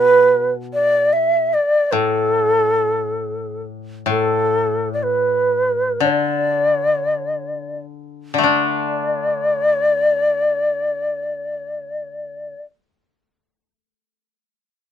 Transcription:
Already playing: B2 B4
0.73 D5
1.13 E5
1.54 D5
1.92 A2 A4
4.06 A2
4.10 A4
4.93 D5
5.03 B4
6.00 D3 D5
8.34 D3
8.38 A3
8.43 D4 D5

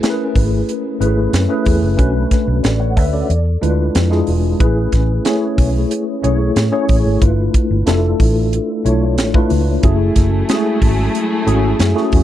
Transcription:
Already playing: A3 C#4 E4 G#4 B4
0.03 A3 C#4 E4 G#4 A#4, snare, closed hi-hat
0.10 B4
0.35 G#1, kick, open hi-hat
0.69 closed hi-hat
1.00 G#1 A3 C#4 E4 G#4 B4, closed hi-hat
1.33 F#2, snare, closed hi-hat
1.49 A3 C#4 E4 G#4 B4
1.66 E2, kick, open hi-hat
1.82 F#1
1.97 B1 A3 C#4 D4 F#4 B4, kick, closed hi-hat
2.31 kick, snare, closed hi-hat
2.48 B1
2.63 A1 A4 D5, snare, closed hi-hat
2.80 C#5 F#5
2.96 D2 B4 E5, kick, open hi-hat
3.13 A4 D5
3.30 E2, closed hi-hat
3.61 D2 G#3 D4 E4 F4 B4, closed hi-hat
3.95 F2, snare, closed hi-hat
4.10 G#3 D4 E4 F4 G#4, snare
4.27 E1, open hi-hat
4.59 A1 A3 C#4 E4 G#4 B4, kick, closed hi-hat
4.92 A1, kick, snare, closed hi-hat
5.24 A3 C#4 E4 G#4 C#5, snare, closed hi-hat
5.58 B1, kick, open hi-hat
5.91 closed hi-hat
6.22 B1 A3 C#4 E4 G#4 C#5, closed hi-hat
6.56 A2, snare, closed hi-hat
6.72 A3 C#4 E4 G#4 C#5
6.88 A1, kick, open hi-hat
7.05 G#1
7.21 G1 A3 D4 E4 F4 B4, kick, closed hi-hat
7.54 kick, closed hi-hat
7.70 G1
7.86 F1 A3 D4 E4 F4 A4, snare, closed hi-hat
8.20 A1, kick, open hi-hat
8.53 closed hi-hat
8.85 B1 A3 D4 E4 F4 C#5, closed hi-hat
9.18 A1, snare, closed hi-hat
9.34 A3 D4 E4 F4 B4, kick
9.50 C#2, open hi-hat
9.83 F#1 F#3 A3 C#4 E4 F#4 G#4, kick, closed hi-hat
10.16 F#1, kick, snare, closed hi-hat
10.48 G#3 C#4 E4 F#4 G#4, snare, closed hi-hat
10.55 A3
10.82 G#1, kick, open hi-hat
11.15 closed hi-hat
11.46 G#1 A3 C#4 E4 F#4 G#4, closed hi-hat
11.79 F#2, snare, closed hi-hat
11.95 A3 C#4 E4 F#4 G#4, snare
12.12 E2, kick, open hi-hat

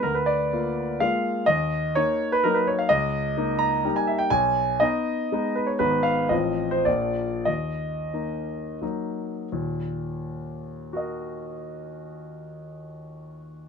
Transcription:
0.03 D2 A#4
0.15 B4
0.26 D5
0.53 A#3 F4
1.00 G#3 A#3 F4 F5
1.46 D#2 D#5
1.95 A#3 D#4 C#5
2.32 B4
2.44 F#3 A#3 D#4 A#4
2.54 B4
2.67 C#5
2.79 F5
2.89 C#2 D#5
3.37 A#3 D#4
3.59 A#5
3.84 G3 A#3 D#4
3.96 G#5
4.07 E5
4.19 G5
4.30 B1 G#5
4.80 B3 D#4 D#5
5.32 G#3 B3 D#4
5.55 B4
5.67 C#5
5.79 G#1 G#3 B3 D#4 B4
6.03 F5
6.29 A1 F3 C4 F4 D#5
6.71 C5
6.85 A#1 F3 A#3 F4 D5
7.45 D#2 D#5
8.14 A#3 D#4
8.82 F#3 A#3 D#4
9.52 D#2 A#2
10.93 F#4 A#4 D#5

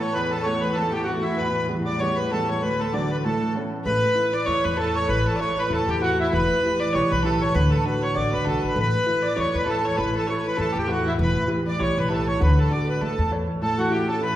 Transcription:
Already playing: A2 E3 A3 B3 A4
0.01 C#5
0.13 E2 B4
0.17 B4
0.31 A4
0.35 A4
0.43 E3 A3 B3 C#5
0.47 C#5
0.61 B4
0.72 A4
0.77 E3 A3 B3 A4
0.91 G4
0.96 G4
1.04 E3 A3 F#4
1.08 B3 F#4
1.22 E4
1.37 E2 B4
1.68 E3 G3 B3
1.86 D5
1.99 E3 G3 B3 C#5
2.16 B4
2.31 E3 G3 B3 A4
2.48 C#5
2.62 D2 B4
2.79 A4
2.93 D3 F#3 A3 D5
3.11 B4
3.24 A2 A4
3.55 A3 B3 C#4
3.85 A1 A2 E3 A3 B4
4.15 E4 A4 B4
4.33 D5
4.46 E2 E4 A4 B4 C#5
4.64 E2 B4
4.77 E4 A4 B4
4.95 C#5
5.08 A1 E3 B4
5.26 A4
5.36 C#5 D5
5.40 E4 A4 B4 C#5
5.59 B4
5.70 E2 E4 A4 B4
5.88 E2 G4
6.00 E4 F#4 A4 B4
6.20 E4
6.33 E1 E3 B4
6.63 E4 G4 B4
6.80 D5
6.92 B1 E4 G4 B4 C#5
7.10 B1 B4
7.22 E4 G4 A4 B4
7.41 C#5
7.54 D2 D3 B4
7.70 A4
7.85 D4 F#4 A4 B4
8.02 C#5
8.14 A1 D4 F#4 A4 D5
8.31 C#2 B4
8.44 B1 D4 F#4 A4
8.48 A4
8.62 A1 B4
8.67 B4
8.74 A1 A2 E3 A3 B4
8.80 B4
9.06 E4 A4 B4
9.22 D5
9.36 E2 E4 A4 B4 C#5
9.53 E2 B4
9.58 B4
9.66 E4 A4 B4
9.84 C#5
9.96 A1 E3 A4 B4
10.15 A4
10.27 E4 A4 B4 C#5
10.42 B4
10.48 B4
10.57 E2 E4 A4 B4
10.72 E2 G4
10.78 G4
10.83 F#4 G4
10.88 E4 A4 B4
10.92 F#4
11.06 E4
11.18 E1 E3 B4
11.22 B4
11.47 E4 G4 B4
11.66 D5
11.79 B1 E4 G4 B4 C#5
11.97 B1 B4
12.09 E4 G4 A4 B4
12.27 C#5
12.40 D2 D3 B4
12.58 A4
12.70 D4 F#4 A4 D5
12.89 B4
13.01 A1 A3 A4
13.18 E2
13.31 A4 B4 C#5
13.62 A2 E3 A4
13.78 E3 F#4
13.90 E4 G4
14.08 C#4 A4
14.21 E4 B4

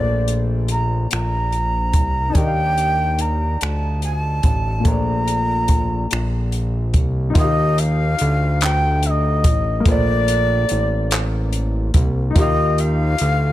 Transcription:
Already playing: A#1 A#2 A3 C5 D5
0.28 closed hi-hat
0.68 A#5, closed hi-hat
1.11 A#1 A#5, finger snap, closed hi-hat
1.52 closed hi-hat
1.93 C2, kick, closed hi-hat
2.30 D4 D#4
2.35 D#2 G4 G5, kick, closed hi-hat
2.41 D#5
2.47 F5
2.78 closed hi-hat
3.19 A#5, closed hi-hat
3.61 D2 A5, finger snap, closed hi-hat
4.02 G#5, closed hi-hat
4.15 A5
4.43 A1, kick, closed hi-hat
4.80 A#2 A3
4.85 A#1 C5 A#5, kick, closed hi-hat
4.91 D5
5.28 closed hi-hat
5.68 kick, closed hi-hat
6.11 A#1, finger snap, closed hi-hat
6.52 closed hi-hat
6.94 C2, kick, closed hi-hat
7.30 D#4 F4
7.35 D#2 F4 D#5, kick, closed hi-hat
7.41 G4 F5
7.78 F5, closed hi-hat
8.19 D2, closed hi-hat
8.61 G5, clap, closed hi-hat
9.03 E5, closed hi-hat
9.10 D#5
9.44 A1, kick, closed hi-hat
9.80 A3 A#3
9.85 A#1 C5 D5, kick, closed hi-hat
9.91 D5
10.28 closed hi-hat
10.69 A1, closed hi-hat
11.11 clap, closed hi-hat
11.53 closed hi-hat
11.94 C2, kick, closed hi-hat
12.31 D#4 F4
12.36 D#2 G4 D#5, kick, closed hi-hat
12.42 F5
12.78 F5, closed hi-hat
13.18 D2, closed hi-hat

